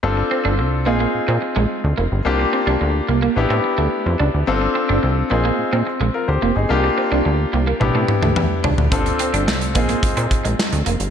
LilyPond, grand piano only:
\new Staff \with { instrumentName = "Grand piano" } { \time 4/4 \key bes \lydian \tempo 4 = 108 << { r1 | r1 | r2. <f' bes'>16 <g' c''>8 <ees' aes'>16~ | <ees' aes'>16 r2. r8. |
r1 | } \\ { <c' d' f' a'>4. <c' ees' f' aes'>2~ <c' ees' f' aes'>8 | <bes d' f' g'>2 <b d' e' g'>2 | <c' d' f' a'>4. <c' ees' f' aes'>2~ <c' ees' f' aes'>8 | <bes d' f' g'>2 <b d' e' g'>2 |
<c' d' f' a'>4. <c' ees' f' aes'>2~ <c' ees' f' aes'>8 | } >> }